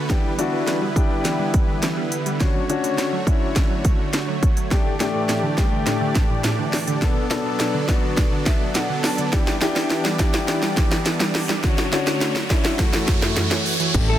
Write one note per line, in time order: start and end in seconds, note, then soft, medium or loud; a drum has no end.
0.00 4.67 D3 medium
0.00 2.37 B3 medium
0.00 2.37 B4 medium
0.10 0.23 E3 medium
0.10 2.38 G3 medium
0.10 0.30 D4 medium
0.10 0.31 E4 medium
0.10 2.38 E4 medium
0.10 0.31 G4 medium
0.10 kick loud
0.10 snare medium
0.10 closed hi-hat medium
0.24 0.37 G3 medium
0.38 0.52 E3 medium
0.38 0.80 D4 medium
0.38 0.80 E4 medium
0.38 0.80 F#4 medium
0.38 closed hi-hat medium
0.53 0.66 E3 medium
0.67 0.81 E3 medium
0.67 snare medium
0.67 closed hi-hat medium
0.82 0.95 G3 medium
0.96 1.09 D4 medium
0.96 1.79 D4 medium
0.96 1.79 E4 medium
0.96 1.80 G4 medium
0.96 kick medium
0.96 closed hi-hat medium
1.11 1.24 G3 medium
1.25 1.38 E3 medium
1.25 snare medium
1.25 closed hi-hat medium
1.39 1.53 G3 medium
1.54 1.67 E3 medium
1.54 kick loud
1.54 closed hi-hat medium
1.68 1.81 E3 medium
1.83 1.96 E3 medium
1.83 snare medium
1.83 closed hi-hat loud
1.97 2.10 G3 medium
2.12 closed hi-hat medium
2.26 2.39 G3 medium
2.26 closed hi-hat medium
2.40 2.54 D3 loud
2.40 6.98 A3 medium
2.40 2.61 C#4 medium
2.40 2.61 D4 medium
2.40 4.69 F#4 medium
2.40 2.61 F#4 medium
2.40 4.69 C#5 medium
2.40 kick loud
2.40 snare medium
2.40 closed hi-hat medium
2.55 2.68 F#3 medium
2.69 2.83 D3 medium
2.69 3.11 C#4 medium
2.69 3.11 D4 medium
2.69 3.11 F#4 loud
2.69 closed hi-hat medium
2.84 2.97 D3 medium
2.84 closed hi-hat medium
2.98 3.11 D3 medium
2.98 snare medium
2.98 closed hi-hat medium
3.13 3.26 F#3 medium
3.27 4.10 C#4 medium
3.27 3.40 C#4 medium
3.27 4.10 D4 medium
3.27 4.10 E4 medium
3.27 kick medium
3.27 closed hi-hat medium
3.41 3.55 F#3 medium
3.56 3.69 D3 medium
3.56 kick medium
3.56 snare medium
3.56 closed hi-hat medium
3.70 3.83 F#3 medium
3.85 3.98 D3 medium
3.85 kick medium
3.85 closed hi-hat medium
3.99 4.12 D3 medium
4.13 4.27 D3 medium
4.13 snare medium
4.13 closed hi-hat loud
4.28 4.41 F#3 medium
4.43 kick medium
4.43 closed hi-hat medium
4.57 4.70 F#3 medium
4.57 closed hi-hat medium
4.71 4.84 A2 loud
4.71 7.00 E3 medium
4.71 4.92 A3 medium
4.71 11.60 D4 medium
4.71 4.92 D4 medium
4.71 7.00 G4 medium
4.71 4.92 G4 medium
4.71 9.29 D5 medium
4.71 kick loud
4.71 snare medium
4.71 closed hi-hat medium
4.71 riser medium
4.86 4.99 D3 medium
5.00 5.13 A2 medium
5.00 5.42 A3 medium
5.00 5.42 D4 medium
5.00 5.42 G4 medium
5.00 snare medium
5.00 closed hi-hat medium
5.15 5.28 A2 medium
5.29 5.42 A2 medium
5.29 snare medium
5.29 closed hi-hat medium
5.43 5.57 D3 medium
5.58 5.71 G3 medium
5.58 6.41 A3 medium
5.58 6.41 D4 medium
5.58 6.41 G4 medium
5.58 kick medium
5.58 snare medium
5.58 closed hi-hat medium
5.72 5.85 D3 medium
5.87 6.00 A2 medium
5.87 snare medium
5.87 closed hi-hat medium
6.01 6.14 D3 medium
6.15 6.29 A2 medium
6.15 kick loud
6.15 snare medium
6.15 closed hi-hat medium
6.30 6.43 A2 medium
6.44 6.58 A2 medium
6.44 snare medium
6.44 closed hi-hat loud
6.59 6.72 D3 medium
6.73 snare medium
6.73 open hi-hat medium
6.87 7.01 D3 medium
6.87 closed hi-hat medium
7.02 7.15 B2 medium
7.02 9.31 F#3 medium
7.02 7.23 B3 medium
7.02 11.60 B3 medium
7.02 7.23 D4 medium
7.02 9.31 A4 medium
7.02 7.23 A4 medium
7.02 kick loud
7.02 snare loud
7.02 closed hi-hat medium
7.17 7.30 D3 medium
7.31 7.44 B2 medium
7.31 7.72 B3 medium
7.31 7.73 D4 medium
7.31 7.73 A4 medium
7.31 snare loud
7.31 closed hi-hat medium
7.45 7.59 B2 medium
7.60 7.73 B2 medium
7.60 snare medium
7.60 closed hi-hat medium
7.74 7.87 D3 medium
7.88 8.02 A3 medium
7.88 8.72 B3 medium
7.88 8.72 D4 medium
7.88 8.72 F#4 loud
7.88 kick medium
7.88 snare medium
7.88 closed hi-hat medium
8.03 8.16 D3 medium
8.17 8.31 B2 medium
8.17 kick loud
8.17 snare loud
8.17 closed hi-hat loud
8.32 8.45 D3 medium
8.46 8.59 B2 medium
8.46 8.73 E5 medium
8.46 kick loud
8.46 snare loud
8.46 closed hi-hat medium
8.61 8.74 B2 medium
8.75 8.88 B2 medium
8.75 9.02 F#5 medium
8.75 snare medium
8.75 closed hi-hat loud
8.90 9.03 D3 medium
9.04 9.31 A5 medium
9.04 snare loud
9.04 open hi-hat medium
9.18 9.32 D3 medium
9.18 closed hi-hat medium
9.33 9.46 E3 medium
9.33 11.61 E3 medium
9.33 9.54 D4 medium
9.33 9.54 E4 medium
9.33 11.61 G4 medium
9.33 9.54 G4 medium
9.33 11.61 D5 medium
9.33 kick loud
9.33 snare loud
9.33 closed hi-hat medium
9.47 9.60 G3 medium
9.47 snare medium
9.62 9.75 E3 medium
9.62 10.03 D4 medium
9.62 10.03 E4 medium
9.62 10.03 G4 loud
9.62 snare loud
9.62 closed hi-hat medium
9.76 9.89 E3 medium
9.76 snare loud
9.90 10.04 E3 medium
9.90 snare loud
9.90 closed hi-hat medium
10.05 10.18 G3 medium
10.05 snare loud
10.19 11.02 D4 medium
10.19 10.32 D4 medium
10.19 11.02 E4 medium
10.19 11.03 G4 medium
10.19 kick medium
10.19 snare loud
10.19 closed hi-hat medium
10.34 10.47 G3 medium
10.34 snare loud
10.48 10.61 E3 medium
10.48 snare loud
10.48 closed hi-hat medium
10.63 10.76 G3 medium
10.63 snare loud
10.77 10.90 E3 medium
10.77 kick loud
10.77 snare loud
10.77 closed hi-hat medium
10.91 11.05 E3 medium
10.91 snare loud
11.06 11.19 E3 medium
11.06 snare loud
11.06 closed hi-hat loud
11.20 11.33 G3 medium
11.20 snare loud
11.35 snare loud
11.35 open hi-hat medium
11.49 11.62 G3 medium
11.49 snare loud
11.49 closed hi-hat medium
11.63 11.77 D3 loud
11.63 12.78 D3 medium
11.63 12.78 A3 medium
11.63 11.84 C#4 medium
11.63 11.84 D4 medium
11.63 11.85 F#4 loud
11.63 13.92 F#4 medium
11.63 13.92 C#5 medium
11.63 kick loud
11.63 snare loud
11.63 closed hi-hat medium
11.78 11.91 F#3 medium
11.78 snare loud
11.92 12.06 D3 medium
11.92 12.34 C#4 medium
11.92 12.34 D4 medium
11.92 12.34 F#4 loud
11.92 snare loud
11.92 closed hi-hat medium
12.07 12.20 D3 medium
12.07 snare loud
12.07 closed hi-hat medium
12.21 12.34 D3 medium
12.21 snare loud
12.21 closed hi-hat medium
12.36 12.49 F#3 medium
12.36 snare loud
12.50 12.79 C#4 medium
12.50 12.63 C#4 medium
12.50 12.79 D4 medium
12.50 12.78 E4 loud
12.50 kick medium
12.50 snare loud
12.50 closed hi-hat medium
12.65 12.78 F#3 medium
12.65 snare loud
12.79 12.92 F#2 medium
12.79 13.93 E3 medium
12.79 13.71 A3 medium
12.79 13.93 A3 medium
12.79 13.71 E4 medium
12.79 13.72 F#4 loud
12.79 kick loud
12.79 snare loud
12.79 closed hi-hat loud
12.93 13.07 E3 medium
12.93 snare loud
13.08 13.21 F#2 medium
13.08 kick loud
13.08 snare loud
13.08 closed hi-hat medium
13.22 13.35 F#2 medium
13.22 snare loud
13.36 13.50 F#2 medium
13.36 snare loud
13.36 closed hi-hat loud
13.51 13.64 E3 medium
13.51 snare loud
13.66 open hi-hat medium
13.80 13.93 E3 medium
13.80 closed hi-hat medium
13.94 14.19 A1 loud
13.94 14.19 E3 medium
13.94 14.19 G3 medium
13.94 14.19 A3 medium
13.94 14.19 D4 medium
13.94 14.19 E4 medium
13.94 14.19 G4 medium
13.94 kick loud
13.94 closed hi-hat medium
13.94 crash loud
13.94 impact medium
14.09 14.19 A3 medium
14.09 14.19 A4 medium